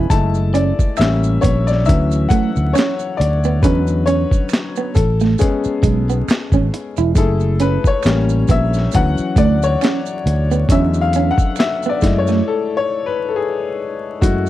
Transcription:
Already playing: grand piano G#3 B3 C#4 G#5 B5
0.10 fretless electric bass F#1, grand piano G#3 A3 E4 A5, kick, closed hi-hat, maracas
0.35 maracas
0.54 clean electric guitar C#4, grand piano D5, closed hi-hat, maracas
0.79 kick, maracas
0.97 fretless electric bass A1, grand piano G3 A#3 C#4 E5, finger snap, maracas
1.01 snare, closed hi-hat
1.24 maracas
1.41 fretless electric bass A#1, clean electric guitar B3, grand piano C#5, kick, closed hi-hat, maracas
1.67 grand piano D5, maracas
1.71 snare
1.85 grand piano E3 F#3 C#4 E5, kick, closed hi-hat, maracas
1.89 fretless electric bass D2
2.11 maracas
2.29 clean electric guitar A3, grand piano F#5, muted fretless electric bass stroke, kick, closed hi-hat, maracas
2.56 fretless electric bass D2, maracas
2.73 clean electric guitar C#4, grand piano C#5, finger snap, maracas
2.78 snare, closed hi-hat
2.99 maracas
3.17 fretless electric bass D2, grand piano D5, muted clean electric guitar stroke, closed hi-hat
3.44 clean electric guitar B3, maracas
3.63 fretless electric bass E2, grand piano D3 F#3 G#3 C#4 B4, clean electric guitar C#4, kick, closed hi-hat, maracas
3.87 maracas
4.06 clean electric guitar C#4, grand piano C#5, closed hi-hat, maracas
4.31 kick, maracas
4.49 finger snap, maracas
4.53 snare, closed hi-hat
4.76 clean electric guitar B3, maracas
4.95 fretless electric bass A1, grand piano A4, muted clean electric guitar stroke, kick, closed hi-hat, maracas
5.20 clean electric guitar A3, snare, maracas
5.38 grand piano G#3 B3 C#4 G#4, muted clean electric guitar stroke, kick, closed hi-hat, maracas
5.64 muted fretless electric bass stroke, maracas
5.83 fretless electric bass B1, clean electric guitar G#3, kick, closed hi-hat, maracas
6.09 clean electric guitar B3, maracas
6.28 finger snap, muted fretless electric bass stroke, snare, closed hi-hat, maracas
6.52 fretless electric bass G#1, clean electric guitar C#4, kick, maracas
6.74 muted clean electric guitar stroke, closed hi-hat
6.97 fretless electric bass E1, clean electric guitar E4, maracas
7.15 fretless electric bass F#1, grand piano A3 E4 G#4 A4, kick, closed hi-hat, maracas
7.40 maracas
7.60 clean electric guitar C#4, grand piano B4, closed hi-hat, maracas
7.84 grand piano C#5, kick, maracas
8.03 fretless electric bass A1, grand piano G3 A#3 C#4, finger snap, snare, closed hi-hat, maracas
8.29 maracas
8.48 fretless electric bass A#1, clean electric guitar B3, grand piano E5, kick, closed hi-hat, maracas
8.74 snare, maracas
8.92 fretless electric bass D2, grand piano E3 F#3 C#4 F#5, kick, closed hi-hat, maracas
9.18 muted fretless electric bass stroke, maracas
9.36 fretless electric bass D2, clean electric guitar A3, grand piano D5, kick, closed hi-hat, maracas
9.63 grand piano C#5, maracas
9.81 clean electric guitar C#4, finger snap, snare, closed hi-hat, maracas
10.06 maracas
10.26 fretless electric bass D2, muted clean electric guitar stroke, closed hi-hat
10.51 clean electric guitar B3, maracas
10.69 fretless electric bass E2, grand piano D3 F#3 G#3 C#4 E5, clean electric guitar C#4, kick, closed hi-hat, maracas
10.94 maracas
11.01 grand piano F5
11.13 clean electric guitar C#4, closed hi-hat, maracas
11.31 grand piano F#5
11.38 kick, maracas
11.56 grand piano E5, finger snap, maracas
11.60 snare, closed hi-hat
11.83 clean electric guitar B3, maracas
11.89 grand piano D5
12.02 fretless electric bass F#2, grand piano G#3 A3 E4, muted clean electric guitar stroke, kick, snare, closed hi-hat, maracas
12.18 grand piano C#5
12.27 clean electric guitar A3, snare, maracas
12.48 grand piano A4
12.77 grand piano C#5
13.06 grand piano B4
13.29 grand piano A4
13.36 grand piano G#4
14.21 fretless electric bass F#2, grand piano G#3 A3 E4 F#4, kick, closed hi-hat, maracas
14.46 maracas

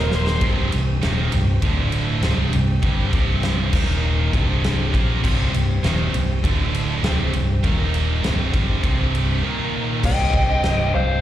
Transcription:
Already playing: fingered electric bass D#1, distorted electric guitar D#2 A#2 D#3, tonewheel organ A#3 D#4 A#4
0.00 lead electric guitar A#4
0.11 lead electric guitar C5, snare
0.27 snare
0.41 fingered electric bass C1, distorted electric guitar C2 G2 C3, tonewheel organ C4 G4 C5, kick, ride
0.72 fingered electric bass C1, distorted electric guitar C2 G2, ride
1.02 fingered electric bass D#1, distorted electric guitar D#2 A#2 D#3, snare, ride
1.32 fingered electric bass C1, distorted electric guitar C2 G2, ride
1.62 fingered electric bass D1, distorted electric guitar D2 A2 D3, tonewheel organ D4 A4 E5, kick, ride
1.92 ride
2.21 fingered electric bass C1, distorted electric guitar C2 G2 C3, tonewheel organ C4 G4 C5, snare, ride
2.53 fingered electric bass C1, distorted electric guitar C2 G2, ride
2.83 fingered electric bass G1, distorted electric guitar G2 D3 G3, kick, ride
3.12 fingered electric bass C1, distorted electric guitar C2 G2 C3, kick, ride
3.43 snare, ride
3.73 fingered electric bass D#1, distorted electric guitar D#2 A#2 D#3, tonewheel organ A#3 D#4 A#4, kick, crash
4.33 fingered electric bass C1, distorted electric guitar C2 G2 C3, tonewheel organ C4 G4 C5, kick, ride
4.64 snare, ride
4.93 fingered electric bass A#1, distorted electric guitar A#2 F3 A#3, kick, ride
5.23 fingered electric bass C1, distorted electric guitar C2 G2 C3, kick, crash
5.54 fingered electric bass C1, distorted electric guitar C2 G2, ride
5.83 fingered electric bass D#1, distorted electric guitar D#2 A#2 D#3, snare, ride
6.14 fingered electric bass C1, distorted electric guitar C2 G2, ride
6.43 fingered electric bass D1, distorted electric guitar D2 A2 D3, tonewheel organ D4 A4 E5, kick, ride
6.74 ride
7.04 fingered electric bass C1, distorted electric guitar C2 G2 C3, tonewheel organ C4 G4 C5, snare, ride
7.33 fingered electric bass C1, distorted electric guitar C2 G2, ride
7.63 fingered electric bass D#1, distorted electric guitar D#2 A#2 D#3, tonewheel organ A#3 D#4 A#4, kick, ride
7.94 ride
8.24 fingered electric bass C1, distorted electric guitar C2 G2 C3, tonewheel organ C4 G4 C5, snare, ride
8.54 fingered electric bass G1, distorted electric guitar G2 D3 G3, kick, ride
8.83 fingered electric bass C1, distorted electric guitar C2 G2 C3, kick, ride
9.15 ride
9.42 distorted electric guitar D#2 A#2 D#3, tonewheel organ A#3 D#4 A#4
10.03 fingered electric bass C1, distorted electric guitar C2 G2 C3, tonewheel organ C4 G4 C5, lead electric guitar D#5 G5, kick, crash
10.34 fingered electric bass C1, distorted electric guitar C2 G2 C3, kick
10.64 fingered electric bass C1, distorted electric guitar C2 G2 C3, snare, crash
10.94 fingered electric bass C1, distorted electric guitar C2 G2 C3, lead electric guitar C5 F5

